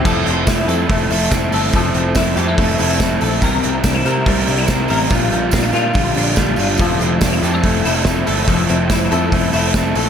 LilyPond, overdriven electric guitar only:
\new Staff \with { instrumentName = "Overdriven electric guitar" } { \time 4/4 \key f \major \tempo 4 = 142 <f a c' e' a'>4. <a c' e' a'>8 <a c' e' a'>8 <a c' e' a'>8 <a c' e' a'>8 <a c' e' a'>8 | <f a c' e' a'>4. <a c' e' a'>8 <a c' e' a'>8 <a c' e' a'>8 <a c' e' a'>8 <a c' e' a'>8 | <c e g c' e' bes'>4. <g c' e' bes'>8 <g c' e' bes'>8 <g c' e' bes'>8 <g c' e' bes'>8 <g c' e' bes'>8 | <bes, d g d' f'>4. <d g d' f'>8 <d g d' f'>8 <d g d' f'>8 <d g d' f'>8 <d g d' f'>8 |
<f a c' e' a'>4. <a c' e' a'>8 <a c' e' a'>8 <a c' e' a'>8 <a c' e' a'>8 <a c' e' a'>8 | <f a c' e' a'>4. <a c' e' a'>8 <a c' e' a'>8 <a c' e' a'>8 <a c' e' a'>8 <a c' e' a'>8 | }